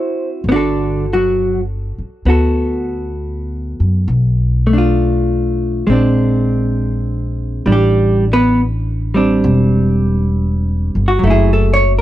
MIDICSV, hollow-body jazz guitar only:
0, 0, Header, 1, 2, 480
1, 0, Start_track
1, 0, Key_signature, 1, "major"
1, 0, Tempo, 906344
1, 239, Time_signature, 4, 2, 24, 8
1, 2638, Tempo, 892857
1, 6420, End_track
2, 0, Start_track
2, 0, Title_t, "Hollow-body jazz guitar"
2, 0, Program_c, 0, 26
2, 0, Note_on_c, 0, 60, 45
2, 0, Note_on_c, 0, 64, 40
2, 0, Note_on_c, 0, 66, 44
2, 0, Note_on_c, 0, 72, 57
2, 153, Note_off_c, 0, 72, 0
2, 230, Note_off_c, 0, 60, 0
2, 231, Note_off_c, 0, 64, 0
2, 233, Note_off_c, 0, 66, 0
2, 258, Note_on_c, 0, 59, 56
2, 273, Note_off_c, 0, 59, 0
2, 273, Note_on_c, 0, 50, 46
2, 275, Note_on_c, 0, 62, 63
2, 275, Note_on_c, 0, 66, 53
2, 296, Note_on_c, 0, 69, 57
2, 555, Note_off_c, 0, 50, 0
2, 556, Note_off_c, 0, 62, 0
2, 594, Note_off_c, 0, 66, 0
2, 600, Note_on_c, 0, 66, 62
2, 605, Note_on_c, 0, 54, 52
2, 845, Note_off_c, 0, 66, 0
2, 847, Note_off_c, 0, 54, 0
2, 1199, Note_on_c, 0, 59, 38
2, 1209, Note_on_c, 0, 66, 38
2, 1210, Note_off_c, 0, 69, 0
2, 1216, Note_on_c, 0, 69, 44
2, 2159, Note_off_c, 0, 59, 0
2, 2164, Note_off_c, 0, 66, 0
2, 2167, Note_off_c, 0, 69, 0
2, 2472, Note_on_c, 0, 57, 49
2, 2507, Note_on_c, 0, 62, 46
2, 2531, Note_on_c, 0, 65, 51
2, 3109, Note_off_c, 0, 57, 0
2, 3115, Note_on_c, 0, 56, 48
2, 3126, Note_off_c, 0, 62, 0
2, 3131, Note_on_c, 0, 60, 47
2, 3139, Note_off_c, 0, 65, 0
2, 3142, Note_on_c, 0, 62, 53
2, 4072, Note_off_c, 0, 56, 0
2, 4078, Note_off_c, 0, 62, 0
2, 4078, Note_on_c, 0, 55, 45
2, 4080, Note_off_c, 0, 60, 0
2, 4085, Note_on_c, 0, 62, 46
2, 4104, Note_off_c, 0, 55, 0
2, 4110, Note_on_c, 0, 55, 53
2, 4111, Note_on_c, 0, 67, 58
2, 4390, Note_off_c, 0, 67, 0
2, 4391, Note_off_c, 0, 55, 0
2, 4439, Note_on_c, 0, 59, 71
2, 4440, Note_on_c, 0, 71, 77
2, 4587, Note_off_c, 0, 71, 0
2, 4588, Note_off_c, 0, 59, 0
2, 4876, Note_on_c, 0, 55, 41
2, 4883, Note_off_c, 0, 62, 0
2, 4885, Note_on_c, 0, 60, 38
2, 4890, Note_on_c, 0, 62, 48
2, 5916, Note_on_c, 0, 66, 59
2, 5973, Note_off_c, 0, 55, 0
2, 5976, Note_on_c, 0, 54, 49
2, 5991, Note_off_c, 0, 66, 0
2, 5999, Note_off_c, 0, 60, 0
2, 6002, Note_on_c, 0, 57, 57
2, 6005, Note_off_c, 0, 62, 0
2, 6020, Note_on_c, 0, 64, 56
2, 6033, Note_off_c, 0, 64, 0
2, 6036, Note_on_c, 0, 68, 59
2, 6039, Note_on_c, 0, 64, 66
2, 6157, Note_off_c, 0, 64, 0
2, 6159, Note_on_c, 0, 69, 70
2, 6267, Note_off_c, 0, 68, 0
2, 6269, Note_on_c, 0, 73, 97
2, 6322, Note_off_c, 0, 69, 0
2, 6370, Note_off_c, 0, 73, 0
2, 6404, Note_on_c, 0, 70, 65
2, 6420, Note_off_c, 0, 54, 0
2, 6420, Note_off_c, 0, 57, 0
2, 6420, Note_off_c, 0, 70, 0
2, 6420, End_track
0, 0, End_of_file